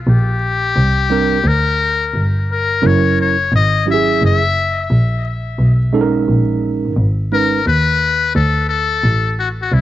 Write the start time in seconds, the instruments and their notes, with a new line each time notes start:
0.07 double bass A#1, muted trumpet G4
0.76 double bass C2
1.10 tine electric piano G3 C4 D4 A#4
1.44 double bass D2, muted trumpet A#4
2.14 double bass G1
2.51 muted trumpet A#4
2.82 double bass F#1, tine electric piano F#3 C#4 E4 A#4
2.86 muted trumpet C#5
3.21 muted trumpet C#5
3.52 double bass G#1, muted trumpet D#5
3.86 tine electric piano F#3 C#4 E4 G4
3.91 tine electric piano G#4, muted trumpet E5
4.22 double bass F#1
4.26 muted trumpet E5
4.91 double bass A#1
5.59 double bass B1
5.93 tine electric piano G#3 C#4 D#4 A4
6.01 tine electric piano A#4
6.28 double bass A#1
6.86 double bass G#1
6.97 double bass G#1
7.32 tine electric piano G#3 C#4 D#4 B4, muted trumpet A#4
7.66 double bass D#2, muted trumpet B4
8.35 double bass D2, muted trumpet A4
8.69 muted trumpet A4
9.04 double bass A1
9.39 muted trumpet F#4
9.62 muted trumpet F#4
9.72 double bass C2, muted trumpet E4